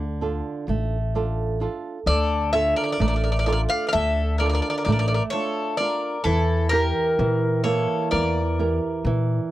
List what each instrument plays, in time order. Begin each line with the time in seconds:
Already playing: upright bass D2, nylon-string guitar D3
0.21 nylon-string guitar D4 F4 A4
0.68 upright bass A1, nylon-string guitar A3
1.15 nylon-string guitar D4 F4 A4
1.60 nylon-string guitar D4 F4 A4
2.06 upright bass D2, nylon-string guitar D3, mandolin A4, bouzouki D5
2.53 nylon-string guitar D4 F4 A4, mandolin C#5, bouzouki E5
2.76 mandolin A#4, bouzouki D5
2.84 mandolin A#4, bouzouki D5
2.92 mandolin A#4, bouzouki D5
3.00 upright bass A1, nylon-string guitar A3, mandolin A#4, bouzouki D5
3.08 mandolin A#4, bouzouki D5
3.16 mandolin A#4, bouzouki D5
3.24 mandolin A#4, bouzouki D5
3.32 mandolin A#4, bouzouki D5
3.39 mandolin A#4, bouzouki D5
3.46 nylon-string guitar D4 F4 A4, mandolin A#4, bouzouki D5
3.53 mandolin A#4, bouzouki D5
3.69 mandolin D5, bouzouki F5
3.87 mandolin D5, bouzouki F5
3.92 upright bass D2, nylon-string guitar D3, mandolin A4, bouzouki E5
4.38 nylon-string guitar D4 F4 A4, mandolin A#4, bouzouki D5
4.46 mandolin A#4, bouzouki D5
4.53 mandolin A#4, bouzouki D5
4.62 mandolin A#4, bouzouki D5
4.70 mandolin A#4, bouzouki D5
4.78 mandolin A#4, bouzouki D5
4.85 upright bass A1, nylon-string guitar A3, mandolin A#4, bouzouki D5
4.92 mandolin A#4, bouzouki D5
4.99 mandolin A#4, bouzouki D5
5.08 mandolin A#4, bouzouki D5
5.14 mandolin A#4, bouzouki D5
5.30 nylon-string guitar D4 F4, mandolin A4, bouzouki C#5
5.77 nylon-string guitar D4 F4, mandolin A#4, bouzouki D5
6.24 upright bass E2, nylon-string guitar E3, mandolin E4, bouzouki A4
6.69 nylon-string guitar E4 G4, mandolin G4, bouzouki A#4
6.73 nylon-string guitar A#4
7.19 upright bass A#2, nylon-string guitar E3
7.63 nylon-string guitar A#3 E4 G4, mandolin A4, bouzouki C#5
8.11 upright bass E2, nylon-string guitar E3, mandolin A#4, bouzouki D5
8.59 nylon-string guitar E4 G4 A#4
9.05 upright bass A#2, nylon-string guitar E3